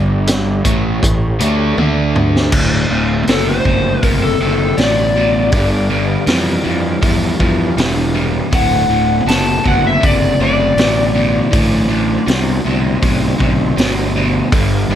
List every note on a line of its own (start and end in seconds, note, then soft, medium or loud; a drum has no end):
0.00 0.61 G1 medium
0.00 0.63 G2 medium
0.00 0.63 D3 medium
0.00 0.64 G3 medium
0.00 0.64 D4 medium
0.00 0.63 D5 medium
0.27 snare loud
0.27 closed hi-hat medium
0.63 1.00 A1 medium
0.63 1.01 A2 medium
0.63 1.01 E3 medium
0.63 1.76 A3 medium
0.63 1.01 A3 medium
0.63 1.76 G4 medium
0.63 1.76 C#5 medium
0.63 kick medium
0.63 closed hi-hat medium
1.02 1.38 A1 medium
1.02 1.32 A2 medium
1.02 1.33 E3 medium
1.02 kick medium
1.02 closed hi-hat medium
1.39 1.75 D2 medium
1.39 1.76 D3 medium
1.39 1.77 A3 loud
1.39 1.77 D4 loud
1.39 closed hi-hat medium
1.76 2.49 D2 medium
1.76 2.52 D3 medium
1.76 2.22 A3 medium
1.76 2.52 A3 medium
1.76 2.31 D4 medium
1.76 2.52 D4 loud
1.76 2.52 D5 medium
1.76 high tom medium
2.16 mid tom medium
2.22 2.46 G3 medium
2.22 2.47 A3 medium
2.26 2.48 B3 medium
2.26 2.50 C4 medium
2.32 2.49 D4 medium
2.32 2.53 E4 medium
2.36 2.54 F4 medium
2.36 2.55 G4 medium
2.36 snare medium
2.43 2.57 A4 medium
2.43 2.58 B4 medium
2.48 2.84 D1 medium
2.48 2.86 D2 medium
2.48 2.86 A2 medium
2.48 5.49 F#3 medium
2.48 5.49 D4 medium
2.48 5.49 C5 medium
2.48 crash loud
2.53 kick loud
2.90 3.22 D1 medium
2.90 3.24 D2 medium
2.90 3.24 A2 medium
3.27 3.59 F#1 medium
3.27 3.62 D2 medium
3.27 3.62 B2 medium
3.27 3.47 A4 medium
3.27 snare medium
3.27 open hi-hat soft
3.47 4.03 C5 medium
3.65 3.97 F#1 medium
3.65 3.99 D2 medium
3.65 3.99 B2 medium
3.65 kick medium
4.03 4.34 F#1 medium
4.03 4.37 D2 medium
4.03 4.37 C3 medium
4.03 4.20 A#4 medium
4.03 kick medium
4.03 open hi-hat soft
4.23 4.40 A4 medium
4.40 4.72 F#1 medium
4.40 4.74 D2 medium
4.40 4.74 C3 medium
4.40 4.77 A4 medium
4.77 5.54 A1 medium
4.77 5.12 D2 medium
4.77 5.12 B2 medium
4.77 6.98 D5 medium
4.77 snare loud
4.77 open hi-hat soft
5.16 5.49 D2 medium
5.16 5.49 B2 medium
5.51 6.16 G1 medium
5.51 5.87 G2 medium
5.51 5.87 D3 medium
5.51 8.49 G3 medium
5.51 8.48 B4 medium
5.51 8.49 F5 medium
5.51 kick loud
5.51 open hi-hat soft
5.90 6.24 G2 medium
5.90 6.24 D3 medium
6.27 6.59 F2 medium
6.27 6.61 G2 medium
6.27 6.61 E3 medium
6.27 snare loud
6.27 open hi-hat medium
6.64 6.97 F2 medium
6.64 6.98 G2 medium
6.64 6.98 E3 medium
7.02 7.34 E2 medium
7.02 7.36 G2 medium
7.02 7.36 F3 medium
7.02 kick loud
7.02 open hi-hat medium
7.39 7.71 E2 medium
7.39 7.73 G2 medium
7.39 7.74 F3 medium
7.39 kick medium
7.76 8.40 E1 medium
7.76 8.11 G2 medium
7.76 8.11 E3 medium
7.76 snare loud
7.76 open hi-hat medium
8.14 8.48 G2 medium
8.14 8.49 E3 medium
8.52 8.84 D1 medium
8.52 8.86 D2 medium
8.52 8.86 A2 medium
8.52 11.49 F#3 medium
8.52 11.49 D4 medium
8.52 11.48 C5 medium
8.52 9.26 F#5 loud
8.52 kick loud
8.52 open hi-hat medium
8.88 9.20 D1 medium
8.88 9.24 D2 medium
8.88 9.24 A2 medium
9.25 9.58 F#1 medium
9.25 9.61 D2 medium
9.25 9.61 B2 medium
9.25 9.64 A5 medium
9.25 open hi-hat medium
9.30 snare loud
9.65 9.97 F#1 medium
9.65 9.99 D2 medium
9.65 9.98 B2 medium
9.65 9.84 F#5 medium
9.65 kick medium
9.87 10.04 E5 medium
10.01 10.34 F#1 medium
10.01 10.36 D2 medium
10.01 10.36 C3 medium
10.01 kick loud
10.01 open hi-hat soft
10.05 10.40 D5 medium
10.38 10.71 F#1 medium
10.38 10.74 D2 medium
10.38 10.74 C3 medium
10.38 12.62 D5 medium
10.76 11.40 A1 medium
10.76 11.11 D2 medium
10.76 11.12 B2 medium
10.76 snare loud
10.76 open hi-hat medium
11.14 11.48 D2 medium
11.14 11.49 B2 medium
11.50 12.16 A1 medium
11.50 11.85 D2 medium
11.50 11.86 A2 medium
11.50 14.49 F#3 medium
11.50 14.48 D4 medium
11.50 14.48 C5 medium
11.50 kick loud
11.50 open hi-hat medium
11.89 12.23 D2 medium
11.89 12.23 A2 medium
12.27 12.59 C2 medium
12.27 12.61 D2 medium
12.27 12.61 B2 medium
12.27 snare loud
12.27 open hi-hat soft
12.65 12.97 C2 medium
12.65 12.99 D2 medium
12.65 12.99 B2 medium
13.02 13.34 B1 medium
13.02 13.36 D2 medium
13.02 13.36 C3 medium
13.02 kick medium
13.02 open hi-hat medium
13.39 13.72 B1 medium
13.39 13.73 D2 medium
13.39 13.73 C3 medium
13.39 kick medium
13.77 14.40 G1 medium
13.77 14.11 D2 medium
13.77 14.11 B2 medium
13.77 snare loud
13.77 open hi-hat medium
14.15 14.49 D2 medium
14.15 14.49 B2 medium
14.51 14.84 G1 medium
14.51 14.86 G2 medium
14.51 14.87 D3 medium
14.51 14.95 G3 medium
14.51 14.95 B4 medium
14.51 14.95 F5 medium
14.51 kick loud
14.51 open hi-hat medium
14.89 14.95 G1 medium
14.89 14.95 G2 medium
14.89 14.95 D3 medium